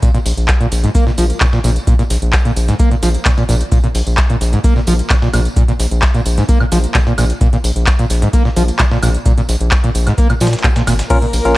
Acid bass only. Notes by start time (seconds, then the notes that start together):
0.03 A#2
0.14 A#2
0.61 A#2
0.84 G#2
0.95 A#3
1.07 A#2
1.18 F3
1.41 A#2
1.53 A#2
1.64 A#2
1.87 A#2
1.99 A#2
2.45 A#2
2.68 G#2
2.80 A#3
2.91 A#2
3.03 F3
3.26 A#2
3.38 A#2
3.49 A#2
3.72 A#2
3.84 A#2
4.30 A#2
4.53 G#2
4.64 A#3
4.76 A#2
4.87 F3
5.10 A#2
5.22 A#2
5.34 A#2
5.57 A#2
5.68 A#2
6.14 A#2
6.38 G#2
6.49 A#3
6.61 A#2
6.72 F3
6.95 A#2
7.07 A#2
7.18 A#2
7.41 A#2
7.53 A#2
7.99 A#2
8.22 G#2
8.34 A#3
8.45 A#2
8.57 F3
8.80 A#2
8.91 A#2
9.03 A#2
9.26 A#2
9.38 A#2
9.84 A#2
10.07 G#2
10.18 A#3
10.30 A#2
10.41 F3
10.64 A#2
10.76 A#2
10.87 A#2
11.10 A#2
11.22 A#2